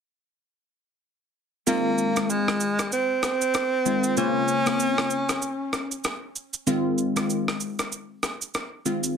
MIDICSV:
0, 0, Header, 1, 4, 480
1, 0, Start_track
1, 0, Key_signature, -4, "minor"
1, 0, Tempo, 625000
1, 1283, Time_signature, 4, 2, 24, 8
1, 7043, End_track
2, 0, Start_track
2, 0, Title_t, "Tenor saxophone"
2, 0, Program_c, 0, 66
2, 1288, Note_on_c, 0, 58, 94
2, 1767, Note_on_c, 0, 56, 81
2, 1779, Note_off_c, 0, 58, 0
2, 2242, Note_off_c, 0, 56, 0
2, 2247, Note_on_c, 0, 60, 99
2, 2468, Note_off_c, 0, 60, 0
2, 2486, Note_on_c, 0, 60, 107
2, 3174, Note_off_c, 0, 60, 0
2, 3207, Note_on_c, 0, 61, 114
2, 4614, Note_off_c, 0, 61, 0
2, 7043, End_track
3, 0, Start_track
3, 0, Title_t, "Synth pluck"
3, 0, Program_c, 1, 84
3, 1280, Note_on_c, 1, 51, 92
3, 1281, Note_on_c, 1, 56, 83
3, 1282, Note_on_c, 1, 60, 81
3, 1284, Note_on_c, 1, 65, 104
3, 1627, Note_off_c, 1, 51, 0
3, 1628, Note_off_c, 1, 56, 0
3, 1628, Note_off_c, 1, 60, 0
3, 1629, Note_off_c, 1, 65, 0
3, 1660, Note_on_c, 1, 51, 74
3, 1661, Note_on_c, 1, 56, 67
3, 1663, Note_on_c, 1, 60, 69
3, 1665, Note_on_c, 1, 65, 83
3, 1823, Note_off_c, 1, 51, 0
3, 1824, Note_off_c, 1, 56, 0
3, 1825, Note_off_c, 1, 60, 0
3, 1825, Note_off_c, 1, 65, 0
3, 2960, Note_on_c, 1, 51, 75
3, 2961, Note_on_c, 1, 56, 68
3, 2963, Note_on_c, 1, 60, 67
3, 2965, Note_on_c, 1, 65, 81
3, 3145, Note_off_c, 1, 51, 0
3, 3146, Note_off_c, 1, 56, 0
3, 3147, Note_off_c, 1, 60, 0
3, 3147, Note_off_c, 1, 65, 0
3, 3201, Note_on_c, 1, 49, 93
3, 3202, Note_on_c, 1, 58, 84
3, 3204, Note_on_c, 1, 72, 86
3, 3205, Note_on_c, 1, 65, 100
3, 3548, Note_off_c, 1, 49, 0
3, 3549, Note_off_c, 1, 58, 0
3, 3549, Note_off_c, 1, 72, 0
3, 3550, Note_off_c, 1, 65, 0
3, 3579, Note_on_c, 1, 49, 76
3, 3581, Note_on_c, 1, 58, 70
3, 3582, Note_on_c, 1, 60, 70
3, 3583, Note_on_c, 1, 65, 81
3, 3743, Note_off_c, 1, 49, 0
3, 3744, Note_off_c, 1, 58, 0
3, 3744, Note_off_c, 1, 60, 0
3, 3745, Note_off_c, 1, 65, 0
3, 5120, Note_on_c, 1, 51, 91
3, 5122, Note_on_c, 1, 56, 86
3, 5123, Note_on_c, 1, 60, 84
3, 5125, Note_on_c, 1, 65, 102
3, 5467, Note_off_c, 1, 51, 0
3, 5468, Note_off_c, 1, 56, 0
3, 5469, Note_off_c, 1, 60, 0
3, 5470, Note_off_c, 1, 65, 0
3, 5499, Note_on_c, 1, 51, 76
3, 5501, Note_on_c, 1, 56, 70
3, 5502, Note_on_c, 1, 60, 67
3, 5504, Note_on_c, 1, 65, 85
3, 5663, Note_off_c, 1, 51, 0
3, 5663, Note_off_c, 1, 56, 0
3, 5664, Note_off_c, 1, 60, 0
3, 5665, Note_off_c, 1, 65, 0
3, 6800, Note_on_c, 1, 51, 72
3, 6802, Note_on_c, 1, 56, 67
3, 6803, Note_on_c, 1, 60, 68
3, 6805, Note_on_c, 1, 65, 82
3, 6985, Note_off_c, 1, 51, 0
3, 6986, Note_off_c, 1, 56, 0
3, 6987, Note_off_c, 1, 60, 0
3, 6987, Note_off_c, 1, 65, 0
3, 7043, End_track
4, 0, Start_track
4, 0, Title_t, "Drums"
4, 1284, Note_on_c, 9, 82, 78
4, 1361, Note_off_c, 9, 82, 0
4, 1522, Note_on_c, 9, 82, 47
4, 1599, Note_off_c, 9, 82, 0
4, 1663, Note_on_c, 9, 82, 60
4, 1667, Note_on_c, 9, 37, 87
4, 1740, Note_off_c, 9, 82, 0
4, 1744, Note_off_c, 9, 37, 0
4, 1766, Note_on_c, 9, 82, 72
4, 1843, Note_off_c, 9, 82, 0
4, 1906, Note_on_c, 9, 37, 74
4, 1983, Note_off_c, 9, 37, 0
4, 2000, Note_on_c, 9, 82, 53
4, 2077, Note_off_c, 9, 82, 0
4, 2145, Note_on_c, 9, 37, 93
4, 2145, Note_on_c, 9, 82, 80
4, 2221, Note_off_c, 9, 37, 0
4, 2221, Note_off_c, 9, 82, 0
4, 2244, Note_on_c, 9, 82, 68
4, 2321, Note_off_c, 9, 82, 0
4, 2480, Note_on_c, 9, 37, 91
4, 2482, Note_on_c, 9, 82, 55
4, 2556, Note_off_c, 9, 37, 0
4, 2559, Note_off_c, 9, 82, 0
4, 2623, Note_on_c, 9, 82, 69
4, 2700, Note_off_c, 9, 82, 0
4, 2720, Note_on_c, 9, 82, 68
4, 2725, Note_on_c, 9, 37, 91
4, 2797, Note_off_c, 9, 82, 0
4, 2802, Note_off_c, 9, 37, 0
4, 2963, Note_on_c, 9, 82, 61
4, 3040, Note_off_c, 9, 82, 0
4, 3100, Note_on_c, 9, 82, 73
4, 3177, Note_off_c, 9, 82, 0
4, 3203, Note_on_c, 9, 82, 73
4, 3280, Note_off_c, 9, 82, 0
4, 3442, Note_on_c, 9, 82, 47
4, 3519, Note_off_c, 9, 82, 0
4, 3583, Note_on_c, 9, 82, 60
4, 3587, Note_on_c, 9, 37, 92
4, 3660, Note_off_c, 9, 82, 0
4, 3663, Note_off_c, 9, 37, 0
4, 3685, Note_on_c, 9, 82, 72
4, 3762, Note_off_c, 9, 82, 0
4, 3826, Note_on_c, 9, 37, 77
4, 3903, Note_off_c, 9, 37, 0
4, 3920, Note_on_c, 9, 82, 53
4, 3997, Note_off_c, 9, 82, 0
4, 4065, Note_on_c, 9, 37, 92
4, 4065, Note_on_c, 9, 82, 77
4, 4142, Note_off_c, 9, 37, 0
4, 4142, Note_off_c, 9, 82, 0
4, 4164, Note_on_c, 9, 82, 67
4, 4241, Note_off_c, 9, 82, 0
4, 4400, Note_on_c, 9, 37, 90
4, 4403, Note_on_c, 9, 82, 54
4, 4477, Note_off_c, 9, 37, 0
4, 4480, Note_off_c, 9, 82, 0
4, 4544, Note_on_c, 9, 82, 69
4, 4621, Note_off_c, 9, 82, 0
4, 4641, Note_on_c, 9, 82, 70
4, 4645, Note_on_c, 9, 37, 96
4, 4718, Note_off_c, 9, 82, 0
4, 4722, Note_off_c, 9, 37, 0
4, 4883, Note_on_c, 9, 82, 60
4, 4960, Note_off_c, 9, 82, 0
4, 5020, Note_on_c, 9, 82, 76
4, 5097, Note_off_c, 9, 82, 0
4, 5123, Note_on_c, 9, 82, 76
4, 5200, Note_off_c, 9, 82, 0
4, 5362, Note_on_c, 9, 82, 45
4, 5439, Note_off_c, 9, 82, 0
4, 5503, Note_on_c, 9, 82, 63
4, 5507, Note_on_c, 9, 37, 89
4, 5580, Note_off_c, 9, 82, 0
4, 5584, Note_off_c, 9, 37, 0
4, 5606, Note_on_c, 9, 82, 70
4, 5683, Note_off_c, 9, 82, 0
4, 5746, Note_on_c, 9, 37, 76
4, 5823, Note_off_c, 9, 37, 0
4, 5840, Note_on_c, 9, 82, 53
4, 5917, Note_off_c, 9, 82, 0
4, 5985, Note_on_c, 9, 37, 90
4, 5985, Note_on_c, 9, 82, 77
4, 6062, Note_off_c, 9, 37, 0
4, 6062, Note_off_c, 9, 82, 0
4, 6085, Note_on_c, 9, 82, 69
4, 6162, Note_off_c, 9, 82, 0
4, 6321, Note_on_c, 9, 37, 85
4, 6323, Note_on_c, 9, 82, 53
4, 6397, Note_off_c, 9, 37, 0
4, 6400, Note_off_c, 9, 82, 0
4, 6464, Note_on_c, 9, 82, 73
4, 6541, Note_off_c, 9, 82, 0
4, 6561, Note_on_c, 9, 82, 67
4, 6566, Note_on_c, 9, 37, 95
4, 6638, Note_off_c, 9, 82, 0
4, 6642, Note_off_c, 9, 37, 0
4, 6803, Note_on_c, 9, 82, 61
4, 6880, Note_off_c, 9, 82, 0
4, 6940, Note_on_c, 9, 82, 79
4, 7017, Note_off_c, 9, 82, 0
4, 7043, End_track
0, 0, End_of_file